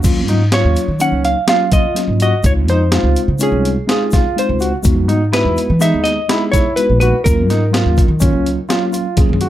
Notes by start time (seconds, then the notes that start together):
0.03 D#2 F#3 A#3 C#4 F4, kick, closed hi-hat, crash, shaker
0.27 G#2 D#4, closed hi-hat
0.52 F#3 A#3 C#4 F4 C#5, snare, closed hi-hat
0.65 D#2
0.76 closed hi-hat, shaker
0.88 D#3
0.99 F#3 A#3 C#4 D#4 F#5, closed hi-hat, shaker
1.12 C#2
1.25 F5, closed hi-hat
1.47 F#3 A#3 C#4 F4 F5, snare, closed hi-hat
1.72 F4 D#5, kick, closed hi-hat, shaker
1.95 F#3 A#3 C#4 F4, snare, closed hi-hat
2.08 G#2
2.20 F#4 D#5, closed hi-hat, shaker
2.43 C#2 G#3 C4 D#4 F4 C#5, kick, closed hi-hat, shaker
2.68 F2 D#4 C5, closed hi-hat
2.91 G#3 C4 D#4 F4, snare, closed hi-hat
3.03 C#2
3.16 closed hi-hat, shaker
3.28 C#3
3.39 G#3 C4 C#4 D#4 F4, closed hi-hat, shaker
3.43 G#4
3.52 C2
3.65 closed hi-hat
3.87 G#3 C4 D#4 F4, snare, closed hi-hat
3.91 G#4
4.11 F4, kick, snare, closed hi-hat, shaker
4.36 G#3 C4 D#4 F4 C5, closed hi-hat
4.49 C#2
4.60 F#4, closed hi-hat, shaker
4.83 E2 G#3 B3 D#4 F#4, kick, closed hi-hat, shaker
5.08 G#2 D#4, closed hi-hat
5.32 G#3 B3 D#4 E4 F#4 B4, snare, closed hi-hat
5.45 E2
5.57 closed hi-hat, shaker
5.70 E3
5.79 G#3 B3 D#4 G#4 E5, snare, closed hi-hat, shaker
5.94 D#2
6.04 D#5, snare, closed hi-hat
6.28 G#3 B3 D#4 E4 G#4, snare, closed hi-hat
6.52 E4 C#5, kick, snare, closed hi-hat, shaker
6.76 G#3 B3 D#4 F#4 B4, closed hi-hat
6.90 A#1
7.00 F#4 B4, closed hi-hat, shaker
7.24 D#2 F#3 A#3 C#4 F4 A#4, kick, closed hi-hat, shaker
7.49 G#2 D#4, snare, closed hi-hat, shaker
7.72 F#3 A#3 C#4 F4, snare, closed hi-hat
7.86 D#2
7.97 kick, closed hi-hat, shaker
8.08 D#3
8.20 F#3 A#3 C#4 F4, kick, closed hi-hat, shaker
8.33 C#2
8.46 closed hi-hat
8.69 F#3 A#3 C#4 F4, snare, closed hi-hat, shaker
8.92 F4, closed hi-hat, shaker
9.16 F#3 A#3 C#4 G#4, kick, closed hi-hat
9.29 D#3
9.33 mid tom
9.41 F#4, closed hi-hat